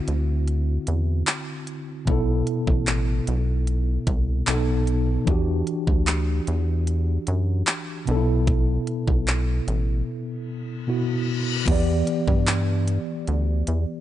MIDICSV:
0, 0, Header, 1, 5, 480
1, 0, Start_track
1, 0, Key_signature, 1, "minor"
1, 0, Tempo, 800000
1, 1245, Time_signature, 4, 2, 24, 8
1, 8403, End_track
2, 0, Start_track
2, 0, Title_t, "Tine electric piano"
2, 0, Program_c, 0, 4
2, 0, Control_c, 0, 64, 127
2, 0, Note_on_c, 0, 50, 74
2, 0, Note_on_c, 0, 60, 70
2, 0, Note_on_c, 0, 64, 67
2, 0, Note_on_c, 0, 66, 82
2, 1215, Note_off_c, 0, 50, 0
2, 1221, Note_off_c, 0, 60, 0
2, 1227, Note_off_c, 0, 64, 0
2, 1233, Note_off_c, 0, 66, 0
2, 1233, Note_on_c, 0, 47, 73
2, 1245, Note_on_c, 0, 59, 71
2, 1252, Control_c, 0, 64, 0
2, 1257, Note_on_c, 0, 64, 70
2, 1268, Note_on_c, 0, 69, 83
2, 1340, Control_c, 0, 64, 127
2, 2655, Note_off_c, 0, 47, 0
2, 2661, Note_off_c, 0, 59, 0
2, 2667, Note_off_c, 0, 64, 0
2, 2672, Note_off_c, 0, 69, 0
2, 2681, Note_on_c, 0, 47, 73
2, 2687, Note_on_c, 0, 59, 69
2, 2692, Note_on_c, 0, 63, 69
2, 2694, Control_c, 0, 64, 0
2, 2699, Note_on_c, 0, 69, 83
2, 2798, Control_c, 0, 64, 127
2, 3149, Note_on_c, 0, 52, 77
2, 3161, Note_on_c, 0, 62, 71
2, 3163, Note_off_c, 0, 47, 0
2, 3166, Note_off_c, 0, 59, 0
2, 3169, Note_off_c, 0, 63, 0
2, 3172, Note_off_c, 0, 69, 0
2, 3173, Control_c, 0, 64, 0
2, 3174, Note_on_c, 0, 66, 72
2, 3186, Note_on_c, 0, 67, 86
2, 3284, Control_c, 0, 64, 127
2, 4813, Note_off_c, 0, 52, 0
2, 4819, Note_off_c, 0, 62, 0
2, 4825, Note_off_c, 0, 66, 0
2, 4831, Note_off_c, 0, 67, 0
2, 4832, Note_on_c, 0, 47, 74
2, 4844, Note_on_c, 0, 59, 70
2, 4853, Control_c, 0, 64, 0
2, 4856, Note_on_c, 0, 62, 56
2, 4868, Note_on_c, 0, 69, 85
2, 4889, Note_off_c, 0, 62, 0
2, 4896, Note_on_c, 0, 64, 68
2, 4962, Control_c, 0, 64, 127
2, 6494, Note_off_c, 0, 47, 0
2, 6500, Note_off_c, 0, 59, 0
2, 6512, Note_off_c, 0, 69, 0
2, 6522, Note_on_c, 0, 47, 53
2, 6526, Note_off_c, 0, 64, 0
2, 6527, Note_on_c, 0, 59, 52
2, 6533, Note_on_c, 0, 64, 50
2, 6539, Note_on_c, 0, 66, 62
2, 6992, Note_on_c, 0, 52, 80
2, 6998, Note_off_c, 0, 59, 0
2, 7003, Note_off_c, 0, 47, 0
2, 7005, Note_on_c, 0, 59, 70
2, 7009, Note_off_c, 0, 64, 0
2, 7012, Note_off_c, 0, 66, 0
2, 7013, Control_c, 0, 64, 0
2, 7017, Note_on_c, 0, 67, 72
2, 7029, Note_on_c, 0, 74, 82
2, 7106, Control_c, 0, 64, 127
2, 8403, Note_off_c, 0, 52, 0
2, 8403, Note_off_c, 0, 59, 0
2, 8403, Note_off_c, 0, 67, 0
2, 8403, Note_off_c, 0, 74, 0
2, 8403, End_track
3, 0, Start_track
3, 0, Title_t, "Analog synth bass"
3, 0, Program_c, 1, 38
3, 48, Note_on_c, 1, 38, 80
3, 471, Note_off_c, 1, 38, 0
3, 528, Note_on_c, 1, 40, 89
3, 738, Note_off_c, 1, 40, 0
3, 1246, Note_on_c, 1, 35, 102
3, 1457, Note_off_c, 1, 35, 0
3, 1606, Note_on_c, 1, 33, 94
3, 1924, Note_off_c, 1, 33, 0
3, 1968, Note_on_c, 1, 35, 95
3, 2391, Note_off_c, 1, 35, 0
3, 2444, Note_on_c, 1, 36, 98
3, 2656, Note_off_c, 1, 36, 0
3, 2688, Note_on_c, 1, 35, 102
3, 3111, Note_off_c, 1, 35, 0
3, 3166, Note_on_c, 1, 40, 104
3, 3378, Note_off_c, 1, 40, 0
3, 3526, Note_on_c, 1, 38, 85
3, 3844, Note_off_c, 1, 38, 0
3, 3887, Note_on_c, 1, 40, 94
3, 4310, Note_off_c, 1, 40, 0
3, 4368, Note_on_c, 1, 42, 95
3, 4578, Note_off_c, 1, 42, 0
3, 4848, Note_on_c, 1, 35, 105
3, 5271, Note_off_c, 1, 35, 0
3, 5447, Note_on_c, 1, 35, 89
3, 5764, Note_off_c, 1, 35, 0
3, 5806, Note_on_c, 1, 33, 95
3, 6018, Note_off_c, 1, 33, 0
3, 7007, Note_on_c, 1, 40, 107
3, 7218, Note_off_c, 1, 40, 0
3, 7367, Note_on_c, 1, 43, 100
3, 7790, Note_off_c, 1, 43, 0
3, 7969, Note_on_c, 1, 38, 101
3, 8179, Note_off_c, 1, 38, 0
3, 8208, Note_on_c, 1, 40, 91
3, 8313, Note_off_c, 1, 40, 0
3, 8403, End_track
4, 0, Start_track
4, 0, Title_t, "Reverse cymbal"
4, 0, Program_c, 2, 119
4, 6044, Note_on_c, 2, 60, 89
4, 7004, Note_off_c, 2, 60, 0
4, 8403, End_track
5, 0, Start_track
5, 0, Title_t, "Drums"
5, 46, Note_on_c, 9, 42, 76
5, 106, Note_off_c, 9, 42, 0
5, 286, Note_on_c, 9, 42, 62
5, 346, Note_off_c, 9, 42, 0
5, 522, Note_on_c, 9, 42, 73
5, 582, Note_off_c, 9, 42, 0
5, 763, Note_on_c, 9, 39, 119
5, 765, Note_on_c, 9, 42, 64
5, 823, Note_off_c, 9, 39, 0
5, 825, Note_off_c, 9, 42, 0
5, 1003, Note_on_c, 9, 42, 61
5, 1063, Note_off_c, 9, 42, 0
5, 1243, Note_on_c, 9, 42, 65
5, 1244, Note_on_c, 9, 36, 112
5, 1303, Note_off_c, 9, 42, 0
5, 1304, Note_off_c, 9, 36, 0
5, 1481, Note_on_c, 9, 42, 70
5, 1541, Note_off_c, 9, 42, 0
5, 1604, Note_on_c, 9, 36, 94
5, 1664, Note_off_c, 9, 36, 0
5, 1723, Note_on_c, 9, 39, 112
5, 1724, Note_on_c, 9, 42, 76
5, 1783, Note_off_c, 9, 39, 0
5, 1784, Note_off_c, 9, 42, 0
5, 1964, Note_on_c, 9, 42, 80
5, 2024, Note_off_c, 9, 42, 0
5, 2204, Note_on_c, 9, 42, 64
5, 2264, Note_off_c, 9, 42, 0
5, 2441, Note_on_c, 9, 42, 77
5, 2442, Note_on_c, 9, 36, 100
5, 2501, Note_off_c, 9, 42, 0
5, 2502, Note_off_c, 9, 36, 0
5, 2682, Note_on_c, 9, 39, 116
5, 2684, Note_on_c, 9, 42, 63
5, 2742, Note_off_c, 9, 39, 0
5, 2744, Note_off_c, 9, 42, 0
5, 2923, Note_on_c, 9, 42, 62
5, 2983, Note_off_c, 9, 42, 0
5, 3163, Note_on_c, 9, 42, 59
5, 3164, Note_on_c, 9, 36, 119
5, 3223, Note_off_c, 9, 42, 0
5, 3224, Note_off_c, 9, 36, 0
5, 3402, Note_on_c, 9, 42, 72
5, 3462, Note_off_c, 9, 42, 0
5, 3524, Note_on_c, 9, 36, 93
5, 3584, Note_off_c, 9, 36, 0
5, 3642, Note_on_c, 9, 39, 110
5, 3644, Note_on_c, 9, 42, 74
5, 3702, Note_off_c, 9, 39, 0
5, 3703, Note_off_c, 9, 42, 0
5, 3884, Note_on_c, 9, 42, 82
5, 3944, Note_off_c, 9, 42, 0
5, 4123, Note_on_c, 9, 42, 67
5, 4183, Note_off_c, 9, 42, 0
5, 4361, Note_on_c, 9, 42, 73
5, 4421, Note_off_c, 9, 42, 0
5, 4602, Note_on_c, 9, 39, 122
5, 4604, Note_on_c, 9, 42, 62
5, 4662, Note_off_c, 9, 39, 0
5, 4664, Note_off_c, 9, 42, 0
5, 4844, Note_on_c, 9, 42, 60
5, 4904, Note_off_c, 9, 42, 0
5, 5084, Note_on_c, 9, 36, 119
5, 5084, Note_on_c, 9, 42, 65
5, 5144, Note_off_c, 9, 36, 0
5, 5144, Note_off_c, 9, 42, 0
5, 5324, Note_on_c, 9, 42, 74
5, 5384, Note_off_c, 9, 42, 0
5, 5445, Note_on_c, 9, 36, 91
5, 5505, Note_off_c, 9, 36, 0
5, 5566, Note_on_c, 9, 39, 110
5, 5567, Note_on_c, 9, 42, 74
5, 5626, Note_off_c, 9, 39, 0
5, 5627, Note_off_c, 9, 42, 0
5, 5807, Note_on_c, 9, 42, 82
5, 5867, Note_off_c, 9, 42, 0
5, 7005, Note_on_c, 9, 36, 115
5, 7006, Note_on_c, 9, 42, 66
5, 7006, Note_on_c, 9, 49, 103
5, 7065, Note_off_c, 9, 36, 0
5, 7066, Note_off_c, 9, 42, 0
5, 7066, Note_off_c, 9, 49, 0
5, 7243, Note_on_c, 9, 42, 80
5, 7303, Note_off_c, 9, 42, 0
5, 7365, Note_on_c, 9, 36, 94
5, 7425, Note_off_c, 9, 36, 0
5, 7484, Note_on_c, 9, 39, 115
5, 7485, Note_on_c, 9, 42, 78
5, 7544, Note_off_c, 9, 39, 0
5, 7545, Note_off_c, 9, 42, 0
5, 7725, Note_on_c, 9, 42, 81
5, 7785, Note_off_c, 9, 42, 0
5, 7965, Note_on_c, 9, 42, 66
5, 8025, Note_off_c, 9, 42, 0
5, 8203, Note_on_c, 9, 42, 77
5, 8263, Note_off_c, 9, 42, 0
5, 8403, End_track
0, 0, End_of_file